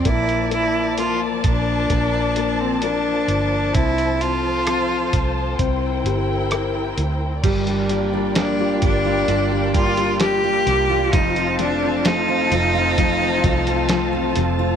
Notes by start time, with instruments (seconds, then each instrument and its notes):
Already playing: string section D5
0.04 fingered electric bass A#1, string section F3 A#4 A5, grand piano A#3, cello E4, kick, closed hi-hat
0.29 closed hi-hat
0.51 grand piano A#3, cello E4, closed hi-hat
0.98 grand piano A#3, cello F4, closed hi-hat
1.44 fingered electric bass A#1, cello D4, kick, closed hi-hat
1.90 fingered electric bass A#1, grand piano A#3, kick, closed hi-hat
2.36 grand piano A#3, closed hi-hat
2.60 cello C4
2.82 grand piano A#3, cello D4, closed hi-hat
3.28 fingered electric bass G1, closed hi-hat
3.74 fingered electric bass C2, grand piano C4, cello E4, string section A4 C5, kick, closed hi-hat
3.98 closed hi-hat
4.21 grand piano C4, cello F4, closed hi-hat
4.67 grand piano C4, cross-stick, closed hi-hat
5.13 fingered electric bass C2, kick, closed hi-hat
5.59 fingered electric bass C2, grand piano C4, string section E4 A#4 G5, kick, closed hi-hat
6.04 fingered electric bass G1, grand piano G4, closed hi-hat
6.51 grand piano A#4, cross-stick, closed hi-hat
6.97 fingered electric bass D2, closed hi-hat
7.43 fingered electric bass G1, steel-string acoustic guitar G3, grand piano G3, string section F4 A#4 D5 G5, kick, closed hi-hat, crash
7.67 grand piano G3, steel-string acoustic guitar D4, closed hi-hat
7.89 grand piano G3, steel-string acoustic guitar A#3, closed hi-hat
8.13 grand piano G3, steel-string acoustic guitar D4
8.35 grand piano G3, steel-string acoustic guitar A#3, cello D4, snare, closed hi-hat
8.59 grand piano G3, steel-string acoustic guitar F4
8.82 fingered electric bass G1, grand piano G3, steel-string acoustic guitar D4, cello D4, kick, closed hi-hat
9.05 grand piano G3, steel-string acoustic guitar F4
9.28 fingered electric bass G1, steel-string acoustic guitar G3, grand piano D4, closed hi-hat
9.51 grand piano G3, steel-string acoustic guitar D4
9.74 grand piano G3, steel-string acoustic guitar A#3, cello F4, kick, closed hi-hat
9.97 grand piano G3, steel-string acoustic guitar D4, closed hi-hat
10.20 grand piano G3, steel-string acoustic guitar A#3, cello G4, snare, closed hi-hat
10.44 grand piano G3, steel-string acoustic guitar F4
10.67 fingered electric bass C2, grand piano G3, steel-string acoustic guitar D4, snare, closed hi-hat
10.90 grand piano G3, steel-string acoustic guitar F4
11.13 fingered electric bass F1, steel-string acoustic guitar F2, grand piano F3, cello D#4, string section C5 F5 A5, kick, closed hi-hat
11.36 steel-string acoustic guitar C4, grand piano C4, closed hi-hat
11.59 grand piano F3, steel-string acoustic guitar A3, cello D4, closed hi-hat
11.82 grand piano C4, steel-string acoustic guitar C4
12.05 grand piano F3, steel-string acoustic guitar A3, cello D#4, snare, closed hi-hat
12.29 grand piano C4, steel-string acoustic guitar F4
12.51 fingered electric bass F1, grand piano F3, steel-string acoustic guitar C4, closed hi-hat
12.75 grand piano C4, steel-string acoustic guitar F4
12.98 steel-string acoustic guitar F2, grand piano F3, kick, closed hi-hat
13.21 steel-string acoustic guitar C4, grand piano C4
13.44 fingered electric bass C2, grand piano F3, steel-string acoustic guitar A3, kick, closed hi-hat
13.67 steel-string acoustic guitar C4, grand piano C4, closed hi-hat
13.89 grand piano F3, steel-string acoustic guitar A3, snare, closed hi-hat
14.13 grand piano C4, steel-string acoustic guitar F4
14.36 fingered electric bass F1, grand piano F3, steel-string acoustic guitar C4, snare, closed hi-hat
14.59 grand piano C4, steel-string acoustic guitar F4